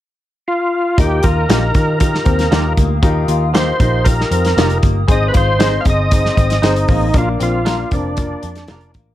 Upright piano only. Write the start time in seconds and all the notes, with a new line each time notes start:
0.98 D#3 D#4 F4 G4 A#4
1.49 D#4 F4 G4 A#4
1.74 D#4 F4 G4 A#4
2.01 D#4 F4 G4 A#4
2.50 D#4 F4 G4 A#4
3.02 D#3 D#4 F4 G4 A#4
3.54 D#4 F4 G4 A#4
3.79 D#4 F4 G4 A#4
4.05 D#4 F4 G4 A#4
4.56 D#4 F4 G4 A#4
5.08 G#2 C4 D#4 G#4 C5
5.59 C4 D#4 G#4 C5
5.85 C4 D#4 G#4 C5
6.11 C4 D#4 G#4 C5
6.63 C4 D#4 G#4 C5
7.14 A#2 A#3 D4 F4 A#4
7.66 A#3 D4 F4 A#4
7.92 A#3 D4 F4 A#4
8.17 A#3 D4 F4 A#4
8.68 A#3 D4 F4 G#4
8.75 A#4